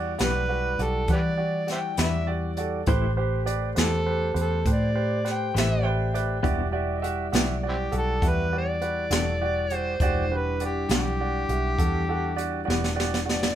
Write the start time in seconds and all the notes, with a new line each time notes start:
Already playing: E2 G3 E4 F#4 G4 D5
0.18 B1 E3 D4 F#4 G4 B4 D5, snare, closed hi-hat
0.23 B4
0.48 F#4 G4 B4
0.79 B1 F#4 G4 A4 D5, closed hi-hat
1.08 E3 F#4 G4 B4, kick, closed hi-hat
1.13 G4 B4 D5
1.37 F#4 G4 D5
1.67 F#4 G4 D5, snare, closed hi-hat
1.72 C5 E5 G5
1.97 E2 E3 D4 F#4 G4 B4 E5, snare, closed hi-hat
2.01 E5
2.27 F#4 G4 D5
2.57 F#4 G4 A4 D5, closed hi-hat
2.86 A1 A3 E4 G4 B4 C5, kick, closed hi-hat
3.17 G4 B4 C5
3.45 G4 B4 D5, closed hi-hat
3.75 E2 A3 E4 G4 B4 C5, snare, closed hi-hat
3.80 A4
4.06 G4 B4 C5
4.34 E2 G4 B4 C5, closed hi-hat
4.41 A4
4.65 A2 G4 B4 C5, kick, closed hi-hat
4.72 D5
4.95 G4 B4 C5
5.24 G4 B4 C5, snare, closed hi-hat
5.31 G5
5.54 A1 A3 E4 G4 B4 C5, snare, closed hi-hat
5.60 E5
5.79 E5 F#5
5.83 G4 B4 D5 G5
6.13 G4 B4 D5 E5 G5, closed hi-hat
6.43 E1 E3 G3 B3 D4 E4 F#4 G4 D5 E5, kick, closed hi-hat
6.72 F#4 G4 D5 E5
6.98 D#5
7.02 F#4 G4 E5, closed hi-hat
7.32 B1 E3 B3 D4 F#4 G4 E5, snare, closed hi-hat
7.63 F#4 G4 D5
7.69 C4 E4 G4
7.91 B1 F#4 G4 A4, closed hi-hat
7.98 A4
8.22 E2 F#4 G4 E5, kick, closed hi-hat
8.28 B4
8.52 F#4 G4 D5
8.58 D5
8.81 F#4 G4 B4, closed hi-hat
9.10 E1 E3 B3 D4 F#4 G4 A4, snare, closed hi-hat
9.41 F#4 G4 D5
9.70 F#4 G4 D5, closed hi-hat
9.75 C5
10.00 E1 G#3 D#4 F4 F#4 G4 D5, kick, closed hi-hat
10.29 G3 D4 E4 F#4 G4 B4
10.37 B4
10.60 F#4 G4 D5, closed hi-hat
10.66 G4
10.89 B1 E3 B3 D4 F#4 G4 D5, snare, closed hi-hat
10.94 G4
11.21 F#4 G4 D5
11.49 B1 F#4 G4 E5, closed hi-hat
11.78 E2 F#4 G4 A4, kick, closed hi-hat
12.09 F#4 G4 A4
12.36 F#4 G4 D5, closed hi-hat
12.65 E1 E3 B3 D4 F#4 G4 D5
12.70 snare
12.84 snare
12.95 F#4 G4 D5
13.00 snare
13.14 snare
13.26 F#4 G4 D5, snare
13.32 D5
13.43 snare